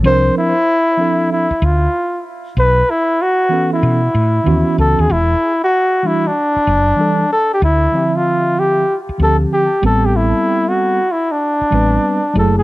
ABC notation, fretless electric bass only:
X:1
M:4/4
L:1/16
Q:"Swing 16ths" 1/4=95
K:Bphr
V:1 name="Fretless electric bass" clef=bass
C,,2 z8 D,,2 z4 | B,,,2 z6 B,,2 A,,2 ^D,, z ^C,, D,, | [K:Am] E,,,2 z8 ^F,,,2 z4 | D,,2 z8 D,,2 z2 A,,,2- |
A,,,2 z8 A,,,2 z2 ^F,,,2 |]